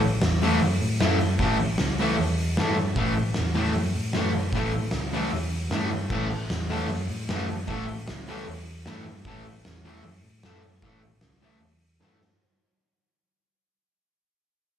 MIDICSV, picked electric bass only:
0, 0, Header, 1, 2, 480
1, 0, Start_track
1, 0, Tempo, 392927
1, 1702, Time_signature, 4, 2, 24, 8
1, 18060, End_track
2, 0, Start_track
2, 0, Title_t, "Picked electric bass"
2, 0, Program_c, 0, 34
2, 0, Note_on_c, 0, 33, 93
2, 231, Note_off_c, 0, 33, 0
2, 259, Note_on_c, 0, 40, 89
2, 711, Note_off_c, 0, 40, 0
2, 755, Note_on_c, 0, 42, 87
2, 975, Note_off_c, 0, 42, 0
2, 991, Note_on_c, 0, 45, 85
2, 1213, Note_off_c, 0, 45, 0
2, 1224, Note_on_c, 0, 42, 87
2, 1674, Note_off_c, 0, 42, 0
2, 1699, Note_on_c, 0, 33, 91
2, 2152, Note_off_c, 0, 33, 0
2, 2188, Note_on_c, 0, 37, 86
2, 2637, Note_off_c, 0, 37, 0
2, 2676, Note_on_c, 0, 40, 97
2, 3122, Note_off_c, 0, 40, 0
2, 3152, Note_on_c, 0, 43, 97
2, 3599, Note_off_c, 0, 43, 0
2, 3609, Note_on_c, 0, 33, 96
2, 4068, Note_off_c, 0, 33, 0
2, 4124, Note_on_c, 0, 40, 93
2, 4566, Note_off_c, 0, 40, 0
2, 4582, Note_on_c, 0, 42, 101
2, 4809, Note_off_c, 0, 42, 0
2, 4823, Note_on_c, 0, 45, 89
2, 5050, Note_off_c, 0, 45, 0
2, 5059, Note_on_c, 0, 42, 89
2, 5514, Note_off_c, 0, 42, 0
2, 5524, Note_on_c, 0, 33, 98
2, 5986, Note_off_c, 0, 33, 0
2, 6008, Note_on_c, 0, 37, 90
2, 6469, Note_off_c, 0, 37, 0
2, 6492, Note_on_c, 0, 40, 99
2, 6952, Note_off_c, 0, 40, 0
2, 6958, Note_on_c, 0, 43, 87
2, 7425, Note_off_c, 0, 43, 0
2, 7451, Note_on_c, 0, 33, 94
2, 7912, Note_off_c, 0, 33, 0
2, 7936, Note_on_c, 0, 40, 88
2, 8395, Note_off_c, 0, 40, 0
2, 8405, Note_on_c, 0, 42, 99
2, 8644, Note_off_c, 0, 42, 0
2, 8665, Note_on_c, 0, 45, 91
2, 8894, Note_off_c, 0, 45, 0
2, 8901, Note_on_c, 0, 42, 88
2, 9359, Note_off_c, 0, 42, 0
2, 9375, Note_on_c, 0, 33, 105
2, 9835, Note_off_c, 0, 33, 0
2, 9863, Note_on_c, 0, 37, 97
2, 10320, Note_off_c, 0, 37, 0
2, 10350, Note_on_c, 0, 40, 97
2, 10804, Note_off_c, 0, 40, 0
2, 10826, Note_on_c, 0, 43, 88
2, 11282, Note_off_c, 0, 43, 0
2, 11301, Note_on_c, 0, 33, 101
2, 11759, Note_off_c, 0, 33, 0
2, 11795, Note_on_c, 0, 40, 93
2, 12247, Note_off_c, 0, 40, 0
2, 12261, Note_on_c, 0, 42, 100
2, 12491, Note_off_c, 0, 42, 0
2, 12498, Note_on_c, 0, 45, 95
2, 12732, Note_off_c, 0, 45, 0
2, 12741, Note_on_c, 0, 42, 87
2, 13199, Note_off_c, 0, 42, 0
2, 13225, Note_on_c, 0, 33, 99
2, 13681, Note_off_c, 0, 33, 0
2, 13711, Note_on_c, 0, 37, 89
2, 14159, Note_off_c, 0, 37, 0
2, 14166, Note_on_c, 0, 40, 94
2, 14630, Note_off_c, 0, 40, 0
2, 14660, Note_on_c, 0, 43, 95
2, 15117, Note_off_c, 0, 43, 0
2, 18060, End_track
0, 0, End_of_file